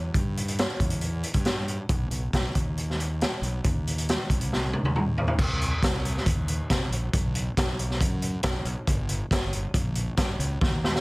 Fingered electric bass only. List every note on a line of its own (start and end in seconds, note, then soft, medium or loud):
0.14 0.65 G2 medium
0.79 1.22 E2 medium
1.34 1.77 G2 medium
1.89 2.06 B1 medium
2.10 2.28 B1 medium
2.33 2.50 B1 medium
2.55 3.23 D#2 medium
3.42 3.59 B1 medium
3.64 4.15 D#2 loud
4.30 4.72 C2 medium
4.83 5.26 D#2 medium
5.38 5.72 C2 medium
5.82 6.16 C2 medium
6.26 6.60 D#2 medium
6.70 6.87 C3 medium
6.90 7.08 A#1 loud
7.13 7.47 B1 medium
7.57 8.02 B1 medium
8.01 8.35 F#2 medium
8.43 8.61 B1 medium
8.65 8.74 B1 loud
8.87 9.21 G1 medium
9.30 9.65 G1 medium
9.74 10.08 A#1 loud
10.17 10.34 G2 medium
10.39 10.56 C#2 loud
10.61 10.95 D#2 loud